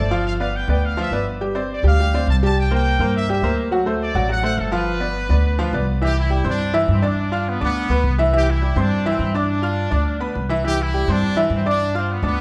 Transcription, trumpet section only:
0.00 0.24 D5 medium
0.26 0.32 F5 loud
0.40 0.53 F5 medium
0.55 0.69 G5 medium
0.70 0.83 G5 medium
0.84 0.98 F5 medium
0.99 1.25 E5 medium
1.72 1.84 D5 medium
1.86 2.25 F5 loud
2.30 2.36 A5 medium
2.44 2.56 A5 loud
2.58 2.71 G5 loud
2.73 3.12 G5 medium
3.15 3.28 E5 medium
3.30 3.56 E5 medium
4.02 4.28 D5 medium
4.30 4.43 F#5 loud
4.44 4.57 F#5 loud
4.58 4.73 A4 medium
4.72 5.88 B4 medium
6.04 6.17 G4 loud
6.19 6.45 E4 medium
6.48 6.74 D4 loud
6.91 7.03 C4 medium
7.05 7.48 D4 medium
7.48 7.62 B3 medium
7.63 8.16 B3 loud
8.35 8.48 G4 loud
8.50 8.77 E4 medium
8.80 9.07 D4 loud
9.08 9.33 C4 medium
9.37 10.36 D4 medium
10.66 10.78 G4 loud
10.81 11.08 E4 medium
11.11 11.38 D4 loud
11.53 11.65 C4 medium
11.68 11.93 D4 loud
11.96 12.08 C4 medium
12.10 12.24 B3 medium
12.25 12.41 B3 loud

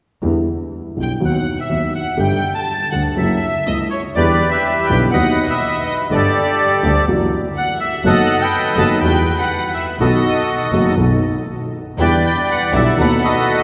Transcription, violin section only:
1.01 1.11 G5 soft
1.25 1.57 F#5 medium
1.61 1.94 E5 medium
1.96 2.18 F#5 medium
2.21 2.54 G5 medium
2.56 2.90 A5 medium
2.91 3.02 F#5 medium
3.16 3.87 E5 medium
3.67 3.78 D#5 medium
3.91 4.02 C#5 soft
4.16 4.51 D5 medium
4.50 4.86 E5 medium
4.86 4.98 G5 medium
5.11 5.46 F#5 medium
5.48 5.83 E5 medium
5.83 5.95 D#5 medium
6.09 7.03 D5 medium
7.55 7.78 F#5 medium
7.79 8.02 E5 medium
8.05 8.39 F#5 medium
8.42 8.75 G5 medium
8.78 8.89 A5 medium
9.03 9.37 G5 medium
9.39 9.73 F#5 medium
9.74 9.85 E5 medium
9.99 10.94 D#5 medium
11.99 12.22 G5 medium
12.25 12.47 G5 medium
12.50 12.72 F#5 medium
12.76 12.97 E5 medium
12.98 13.21 F#5 medium
13.22 13.63 D#5 medium

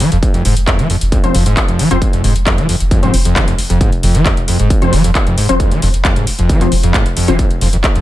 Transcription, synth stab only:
1.24 1.35 F3 medium
1.24 1.35 C4 medium
1.24 1.35 C5 medium
1.91 1.98 F3 medium
1.91 1.98 C4 medium
1.91 1.98 C5 loud
3.03 3.14 F3 medium
3.03 3.14 C4 medium
3.03 3.14 C5 medium
4.82 4.93 F3 medium
4.82 4.93 C4 medium
4.82 4.93 C5 medium
5.49 5.56 F3 medium
5.49 5.56 C4 medium
5.49 5.56 C5 loud
6.61 6.72 F3 medium
6.61 6.72 C4 medium
6.61 6.72 C5 medium
7.28 7.35 F3 medium
7.28 7.35 C4 medium
7.28 7.35 C5 loud

